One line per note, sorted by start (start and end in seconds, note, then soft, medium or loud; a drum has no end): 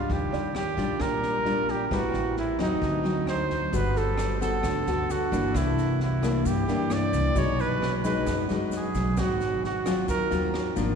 0.00 0.52 G3 medium
0.00 0.52 D4 medium
0.00 0.14 F4 medium
0.00 0.52 F4 medium
0.09 0.31 D#2 medium
0.09 0.98 D#3 medium
0.09 0.56 G4 medium
0.09 kick medium
0.09 snare soft
0.32 0.75 D#2 medium
0.32 1.04 D5 soft
0.32 snare soft
0.55 1.03 G4 medium
0.55 cross-stick medium
0.55 snare soft
0.77 0.99 A#1 medium
0.77 1.42 G3 medium
0.77 1.42 D4 medium
0.77 1.42 F4 medium
0.77 kick soft
0.77 snare soft
1.00 1.87 A#1 medium
1.00 1.89 A#2 medium
1.00 1.72 A#4 loud
1.00 kick medium
1.00 cross-stick medium
1.00 snare soft
1.23 snare soft
1.45 1.75 G3 soft
1.45 1.75 D4 medium
1.45 1.76 F4 medium
1.45 snare soft
1.68 1.87 G4 medium
1.68 kick soft
1.68 snare soft
1.87 1.95 G4 medium
1.91 2.13 A1 medium
1.91 2.80 A2 soft
1.91 2.56 G3 medium
1.91 2.56 C4 medium
1.91 2.56 E4 medium
1.91 2.38 F#4 medium
1.91 2.63 B4 soft
1.91 kick medium
1.91 cross-stick medium
1.91 snare soft
2.14 2.56 A1 medium
2.14 snare soft
2.36 2.59 E4 medium
2.36 snare soft
2.59 2.80 E2 medium
2.59 3.02 F#3 medium
2.59 3.02 C4 medium
2.59 3.02 D#4 medium
2.59 3.25 D#4 medium
2.59 kick soft
2.59 cross-stick medium
2.59 snare soft
2.81 3.69 D2 medium
2.81 3.71 D3 soft
2.81 kick medium
2.81 snare soft
3.04 3.69 F#3 medium
3.04 3.69 C4 medium
3.04 3.69 D#4 medium
3.04 snare soft
3.27 3.78 C5 medium
3.27 cross-stick medium
3.27 snare soft
3.50 kick soft
3.50 snare soft
3.73 4.60 G1 medium
3.73 4.61 G3 medium
3.73 4.37 B3 medium
3.73 4.38 F#4 soft
3.73 4.38 A4 medium
3.73 3.99 B4 medium
3.73 kick medium
3.73 snare soft
3.73 shaker medium
3.96 4.67 A4 soft
3.96 4.42 A4 medium
3.96 snare soft
3.96 shaker soft
4.17 cross-stick medium
4.17 snare soft
4.17 shaker medium
4.41 4.83 B3 medium
4.41 4.83 F#4 medium
4.41 4.83 A4 medium
4.41 5.13 A4 medium
4.41 kick soft
4.41 snare soft
4.41 shaker medium
4.63 4.85 D2 medium
4.63 5.52 D3 medium
4.63 kick medium
4.63 cross-stick medium
4.63 snare soft
4.63 shaker medium
4.86 5.29 D2 medium
4.86 5.29 B3 medium
4.86 5.29 F#4 medium
4.86 5.29 A4 medium
4.86 snare soft
4.86 shaker soft
5.09 5.58 F#4 medium
5.09 snare soft
5.09 shaker medium
5.32 5.53 G1 loud
5.32 6.19 E3 medium
5.32 6.19 A#3 medium
5.32 6.19 D4 medium
5.32 kick soft
5.32 snare soft
5.32 shaker medium
5.54 6.41 C2 medium
5.54 6.43 C3 medium
5.54 6.01 E4 medium
5.54 kick medium
5.54 cross-stick medium
5.54 snare soft
5.54 shaker medium
5.78 snare soft
5.78 shaker soft
6.00 6.49 E4 medium
6.00 snare soft
6.22 6.64 E3 medium
6.22 6.65 A#3 medium
6.22 6.65 D4 medium
6.22 kick soft
6.22 cross-stick medium
6.22 snare soft
6.22 shaker medium
6.45 6.66 G2 medium
6.45 7.34 G2 medium
6.45 6.95 G4 medium
6.45 kick medium
6.45 snare soft
6.45 shaker medium
6.68 7.10 G2 medium
6.68 7.33 E3 medium
6.68 7.33 A#3 medium
6.68 7.33 D4 medium
6.68 snare soft
6.68 shaker soft
6.90 7.40 D5 loud
6.90 cross-stick medium
6.90 snare soft
6.90 shaker medium
7.13 7.34 C2 loud
7.13 kick soft
7.13 snare soft
7.13 shaker medium
7.35 8.23 B1 medium
7.35 8.24 B2 medium
7.35 7.81 F#3 medium
7.35 7.81 G#3 medium
7.35 7.81 D#4 medium
7.35 7.62 C#5 loud
7.35 kick medium
7.35 snare soft
7.35 shaker medium
7.59 7.92 B4 medium
7.59 snare soft
7.59 shaker soft
7.82 cross-stick medium
7.82 snare soft
8.04 8.46 F#3 medium
8.04 8.46 G#3 medium
8.04 8.46 D#4 medium
8.04 8.43 B4 medium
8.04 kick soft
8.04 snare soft
8.04 shaker medium
8.26 8.48 F#2 medium
8.26 9.15 F#2 medium
8.26 kick medium
8.26 cross-stick medium
8.26 snare soft
8.26 shaker medium
8.49 8.92 F#2 medium
8.49 9.14 F#3 medium
8.49 9.14 G#3 medium
8.49 9.14 D#4 medium
8.49 snare soft
8.49 shaker soft
8.72 9.21 G#4 medium
8.72 snare soft
8.72 shaker medium
8.95 9.16 B1 loud
8.95 kick soft
8.95 snare soft
8.95 shaker medium
9.17 10.04 G#1 medium
9.17 10.06 G#2 medium
9.17 9.63 F#3 medium
9.17 9.63 C4 medium
9.17 9.64 F#4 medium
9.17 kick medium
9.17 cross-stick medium
9.17 snare soft
9.17 shaker medium
9.41 snare soft
9.41 shaker soft
9.64 10.07 F#4 medium
9.64 snare soft
9.86 10.28 F#3 medium
9.86 10.28 C4 medium
9.86 10.28 F4 medium
9.86 kick soft
9.86 cross-stick medium
9.86 snare soft
9.86 shaker medium
10.08 10.29 D#2 medium
10.08 10.95 D#3 medium
10.08 10.51 A#4 medium
10.08 kick medium
10.08 snare soft
10.08 shaker medium
10.31 10.74 D#2 medium
10.31 10.73 F#3 medium
10.31 10.73 C4 medium
10.31 10.73 F4 medium
10.31 snare soft
10.31 shaker soft
10.54 cross-stick medium
10.54 snare soft
10.76 10.95 G#1 loud
10.76 10.95 F3 medium
10.76 10.95 A#3 medium
10.76 10.95 D4 medium
10.76 kick soft
10.76 snare soft
10.76 shaker medium